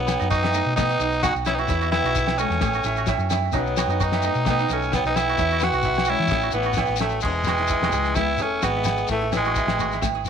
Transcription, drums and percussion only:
0.08 snare, low agogo, shekere
0.20 snare, shekere
0.31 kick, shekere
0.43 snare, low agogo
0.54 shekere
0.77 kick, snare, low agogo, shekere
0.91 shekere
1.00 shekere
1.12 shekere
1.23 kick, snare, low agogo, shekere
1.36 shekere
1.46 snare, low agogo, shekere
1.68 kick, snare, shekere
1.82 shekere
1.92 snare, low agogo
2.05 shekere
2.15 kick, shekere
2.27 snare, low agogo, shekere
2.38 shekere
2.51 snare, shekere
2.61 kick, snare, low agogo, shekere
2.73 shekere
2.84 snare, shekere
2.96 shekere
3.07 kick, snare, low agogo, shekere
3.19 shekere
3.30 snare, low agogo, shekere
3.52 kick, snare, shekere
3.67 shekere
3.77 snare, low agogo, shekere
3.90 shekere
4.01 kick, shekere
4.12 snare, low agogo, shekere
4.22 shekere
4.35 shekere
4.46 kick, snare, low agogo, shekere
4.59 shekere
4.70 snare, shekere
4.82 shekere
4.93 kick, snare, low agogo, shekere
5.05 snare, shekere
5.16 snare, low agogo, shekere
5.38 kick, shekere
5.50 shekere
5.60 snare, low agogo, shekere
5.72 shekere
5.83 kick, shekere
5.94 snare, low agogo, shekere
6.05 shekere
6.17 snare, shekere
6.28 kick, low agogo, shekere
6.32 snare
6.41 shekere
6.51 shekere
6.63 shekere
6.73 snare, shekere
6.77 kick, low agogo
6.86 snare, shekere
6.96 shekere
7.00 snare, low agogo
7.10 shekere
7.21 kick, crash, shekere
7.44 snare, low agogo, shekere
7.57 snare, shekere
7.68 kick, shekere
7.83 snare, low agogo
7.92 shekere
8.04 snare, shekere
8.15 kick, snare, low agogo, shekere
8.38 snare, shekere
8.62 kick, snare, low agogo, shekere
8.84 snare, low agogo, shekere
8.97 shekere
9.07 kick, snare, shekere
9.32 snare, low agogo, shekere
9.44 shekere
9.55 kick, shekere
9.68 snare, low agogo
9.79 shekere
9.92 snare, shekere
10.02 kick, snare, low agogo, shekere
10.25 snare, shekere

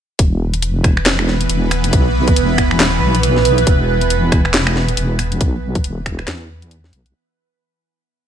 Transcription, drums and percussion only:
0.19 kick, closed hi-hat
0.54 closed hi-hat
0.62 closed hi-hat
0.84 finger snap, kick, closed hi-hat
0.97 finger snap
1.06 snare, clap, closed hi-hat
1.19 finger snap
1.28 snare
1.41 closed hi-hat
1.49 closed hi-hat
1.71 finger snap, open hi-hat
1.84 closed hi-hat
1.93 kick, closed hi-hat
2.28 kick, closed hi-hat
2.36 closed hi-hat
2.58 finger snap, kick, closed hi-hat
2.71 finger snap
2.80 snare, clap, closed hi-hat
3.15 closed hi-hat
3.23 closed hi-hat
3.36 snare
3.45 open hi-hat
3.58 closed hi-hat
3.67 kick, closed hi-hat
4.01 closed hi-hat
4.10 closed hi-hat
4.32 finger snap, kick, closed hi-hat
4.45 finger snap
4.54 snare, clap, closed hi-hat
4.67 finger snap
4.76 snare
4.88 closed hi-hat
4.97 closed hi-hat
5.19 finger snap, open hi-hat
5.32 closed hi-hat
5.41 kick, closed hi-hat
5.75 kick, closed hi-hat
5.84 closed hi-hat
6.06 finger snap, kick, closed hi-hat
6.19 finger snap
6.28 snare, clap, closed hi-hat
6.62 closed hi-hat
6.71 closed hi-hat
6.84 snare
6.93 open hi-hat
7.06 closed hi-hat

